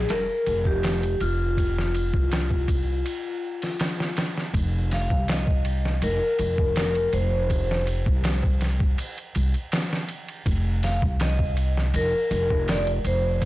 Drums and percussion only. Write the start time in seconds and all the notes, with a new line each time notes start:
0.09 snare, ride
0.46 ride
0.65 kick
0.83 snare, ride
1.03 ride
1.20 ride
1.57 kick, ride
1.78 snare
1.94 ride
2.14 kick
2.32 snare, ride
2.51 kick
2.68 kick, ride
3.06 ride
3.62 snare, open hi-hat
3.79 snare, ride
4.00 snare
4.17 snare, ride
4.38 snare
4.54 kick, ride
4.91 snare, open hi-hat
5.10 kick
5.28 snare, ride
5.47 kick
5.65 ride
5.85 snare
6.02 ride
6.39 ride
6.58 kick
6.76 snare, ride
6.95 ride
7.13 ride
7.50 kick, ride
7.71 snare
7.87 ride
8.06 kick
8.24 snare, ride
8.43 kick
8.61 snare, ride
8.80 kick
8.98 ride
9.18 ride
9.35 ride
9.54 ride
9.72 snare, ride
9.93 snare
10.09 ride
10.28 ride
10.46 kick, ride
10.83 snare, open hi-hat
11.02 kick
11.20 snare, ride
11.39 kick
11.57 ride
11.77 snare
11.94 ride
12.31 ride
12.50 kick
12.68 snare, ride
12.87 ride
13.04 ride
13.42 kick, ride